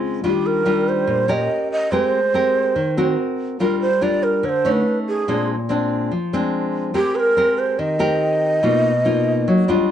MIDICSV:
0, 0, Header, 1, 3, 480
1, 0, Start_track
1, 0, Tempo, 419580
1, 263, Time_signature, 4, 2, 24, 8
1, 11342, End_track
2, 0, Start_track
2, 0, Title_t, "Shakuhachi"
2, 0, Program_c, 0, 77
2, 305, Note_on_c, 0, 67, 78
2, 532, Note_on_c, 0, 70, 93
2, 549, Note_off_c, 0, 67, 0
2, 1016, Note_on_c, 0, 72, 91
2, 1034, Note_off_c, 0, 70, 0
2, 1491, Note_on_c, 0, 75, 81
2, 1508, Note_off_c, 0, 72, 0
2, 1957, Note_off_c, 0, 75, 0
2, 1965, Note_on_c, 0, 75, 93
2, 2196, Note_on_c, 0, 72, 93
2, 2213, Note_off_c, 0, 75, 0
2, 3630, Note_off_c, 0, 72, 0
2, 4128, Note_on_c, 0, 70, 82
2, 4340, Note_off_c, 0, 70, 0
2, 4362, Note_on_c, 0, 72, 91
2, 4608, Note_on_c, 0, 74, 90
2, 4625, Note_off_c, 0, 72, 0
2, 4843, Note_on_c, 0, 70, 84
2, 4861, Note_off_c, 0, 74, 0
2, 5090, Note_on_c, 0, 73, 83
2, 5107, Note_off_c, 0, 70, 0
2, 5136, Note_on_c, 0, 72, 90
2, 5148, Note_off_c, 0, 73, 0
2, 5397, Note_on_c, 0, 71, 79
2, 5414, Note_off_c, 0, 72, 0
2, 5711, Note_off_c, 0, 71, 0
2, 5811, Note_on_c, 0, 68, 73
2, 6245, Note_off_c, 0, 68, 0
2, 7952, Note_on_c, 0, 67, 91
2, 8185, Note_on_c, 0, 71, 83
2, 8202, Note_off_c, 0, 67, 0
2, 8230, Note_on_c, 0, 70, 90
2, 8241, Note_off_c, 0, 71, 0
2, 8676, Note_on_c, 0, 72, 84
2, 8694, Note_off_c, 0, 70, 0
2, 8913, Note_on_c, 0, 75, 91
2, 8931, Note_off_c, 0, 72, 0
2, 11308, Note_off_c, 0, 75, 0
2, 11342, End_track
3, 0, Start_track
3, 0, Title_t, "Nylon-string guitar"
3, 0, Program_c, 1, 24
3, 0, Note_on_c, 1, 49, 54
3, 0, Note_on_c, 1, 56, 63
3, 0, Note_on_c, 1, 60, 58
3, 0, Note_on_c, 1, 65, 68
3, 225, Note_off_c, 1, 56, 0
3, 230, Note_off_c, 1, 60, 0
3, 230, Note_off_c, 1, 65, 0
3, 243, Note_off_c, 1, 49, 0
3, 269, Note_on_c, 1, 51, 54
3, 272, Note_on_c, 1, 55, 50
3, 275, Note_on_c, 1, 62, 55
3, 282, Note_on_c, 1, 65, 51
3, 708, Note_off_c, 1, 55, 0
3, 711, Note_off_c, 1, 62, 0
3, 714, Note_off_c, 1, 65, 0
3, 749, Note_on_c, 1, 55, 52
3, 755, Note_on_c, 1, 62, 49
3, 758, Note_on_c, 1, 65, 55
3, 1202, Note_off_c, 1, 51, 0
3, 1229, Note_on_c, 1, 46, 64
3, 1427, Note_off_c, 1, 55, 0
3, 1431, Note_off_c, 1, 62, 0
3, 1431, Note_off_c, 1, 65, 0
3, 1466, Note_on_c, 1, 61, 58
3, 1474, Note_on_c, 1, 67, 58
3, 1479, Note_on_c, 1, 70, 62
3, 1682, Note_off_c, 1, 46, 0
3, 2146, Note_off_c, 1, 61, 0
3, 2150, Note_off_c, 1, 67, 0
3, 2153, Note_off_c, 1, 70, 0
3, 2195, Note_on_c, 1, 56, 61
3, 2199, Note_on_c, 1, 60, 46
3, 2206, Note_on_c, 1, 67, 45
3, 2208, Note_on_c, 1, 70, 53
3, 2499, Note_off_c, 1, 60, 0
3, 2501, Note_off_c, 1, 67, 0
3, 2505, Note_off_c, 1, 70, 0
3, 2678, Note_on_c, 1, 60, 46
3, 2685, Note_on_c, 1, 67, 48
3, 2689, Note_on_c, 1, 70, 57
3, 3126, Note_off_c, 1, 56, 0
3, 3148, Note_off_c, 1, 60, 0
3, 3150, Note_off_c, 1, 67, 0
3, 3154, Note_off_c, 1, 70, 0
3, 3154, Note_on_c, 1, 51, 55
3, 3402, Note_on_c, 1, 60, 52
3, 3407, Note_on_c, 1, 66, 64
3, 3408, Note_on_c, 1, 70, 60
3, 3605, Note_off_c, 1, 51, 0
3, 4075, Note_off_c, 1, 60, 0
3, 4076, Note_off_c, 1, 66, 0
3, 4078, Note_off_c, 1, 70, 0
3, 4118, Note_on_c, 1, 55, 52
3, 4123, Note_on_c, 1, 62, 45
3, 4125, Note_on_c, 1, 65, 50
3, 4130, Note_on_c, 1, 70, 54
3, 4421, Note_off_c, 1, 62, 0
3, 4423, Note_off_c, 1, 65, 0
3, 4426, Note_off_c, 1, 70, 0
3, 4591, Note_on_c, 1, 62, 50
3, 4597, Note_on_c, 1, 65, 50
3, 4603, Note_on_c, 1, 70, 52
3, 5048, Note_off_c, 1, 55, 0
3, 5065, Note_off_c, 1, 62, 0
3, 5068, Note_off_c, 1, 65, 0
3, 5070, Note_on_c, 1, 50, 56
3, 5071, Note_off_c, 1, 70, 0
3, 5317, Note_on_c, 1, 57, 62
3, 5325, Note_on_c, 1, 61, 60
3, 5327, Note_on_c, 1, 63, 61
3, 5523, Note_off_c, 1, 50, 0
3, 5993, Note_off_c, 1, 57, 0
3, 5995, Note_off_c, 1, 61, 0
3, 5997, Note_off_c, 1, 63, 0
3, 6040, Note_on_c, 1, 46, 60
3, 6044, Note_on_c, 1, 56, 53
3, 6048, Note_on_c, 1, 62, 48
3, 6053, Note_on_c, 1, 60, 52
3, 6343, Note_off_c, 1, 56, 0
3, 6345, Note_off_c, 1, 60, 0
3, 6345, Note_off_c, 1, 62, 0
3, 6511, Note_on_c, 1, 56, 49
3, 6519, Note_on_c, 1, 60, 47
3, 6527, Note_on_c, 1, 62, 56
3, 6970, Note_off_c, 1, 46, 0
3, 6985, Note_off_c, 1, 56, 0
3, 6989, Note_off_c, 1, 60, 0
3, 6992, Note_off_c, 1, 62, 0
3, 6995, Note_on_c, 1, 53, 53
3, 7245, Note_on_c, 1, 56, 53
3, 7248, Note_on_c, 1, 60, 52
3, 7255, Note_on_c, 1, 62, 67
3, 7918, Note_off_c, 1, 56, 0
3, 7918, Note_off_c, 1, 60, 0
3, 7920, Note_off_c, 1, 62, 0
3, 7926, Note_off_c, 1, 53, 0
3, 7940, Note_on_c, 1, 56, 62
3, 7943, Note_on_c, 1, 60, 49
3, 7948, Note_on_c, 1, 67, 50
3, 7954, Note_on_c, 1, 70, 49
3, 8384, Note_off_c, 1, 60, 0
3, 8389, Note_off_c, 1, 67, 0
3, 8389, Note_off_c, 1, 70, 0
3, 8427, Note_on_c, 1, 60, 54
3, 8435, Note_on_c, 1, 67, 57
3, 8440, Note_on_c, 1, 70, 63
3, 8879, Note_off_c, 1, 56, 0
3, 8909, Note_on_c, 1, 51, 61
3, 9108, Note_off_c, 1, 60, 0
3, 9112, Note_off_c, 1, 67, 0
3, 9112, Note_off_c, 1, 70, 0
3, 9142, Note_on_c, 1, 60, 57
3, 9146, Note_on_c, 1, 67, 59
3, 9152, Note_on_c, 1, 70, 69
3, 9825, Note_off_c, 1, 60, 0
3, 9826, Note_off_c, 1, 67, 0
3, 9830, Note_off_c, 1, 70, 0
3, 9843, Note_off_c, 1, 51, 0
3, 9870, Note_on_c, 1, 47, 62
3, 9877, Note_on_c, 1, 58, 43
3, 9877, Note_on_c, 1, 63, 48
3, 9882, Note_on_c, 1, 65, 50
3, 10177, Note_off_c, 1, 58, 0
3, 10180, Note_off_c, 1, 63, 0
3, 10183, Note_off_c, 1, 65, 0
3, 10351, Note_on_c, 1, 58, 50
3, 10356, Note_on_c, 1, 63, 50
3, 10363, Note_on_c, 1, 65, 56
3, 10803, Note_off_c, 1, 47, 0
3, 10841, Note_on_c, 1, 54, 58
3, 11029, Note_off_c, 1, 58, 0
3, 11033, Note_off_c, 1, 63, 0
3, 11034, Note_off_c, 1, 65, 0
3, 11075, Note_on_c, 1, 55, 53
3, 11080, Note_on_c, 1, 62, 59
3, 11090, Note_on_c, 1, 65, 62
3, 11288, Note_off_c, 1, 54, 0
3, 11342, Note_off_c, 1, 55, 0
3, 11342, Note_off_c, 1, 62, 0
3, 11342, Note_off_c, 1, 65, 0
3, 11342, End_track
0, 0, End_of_file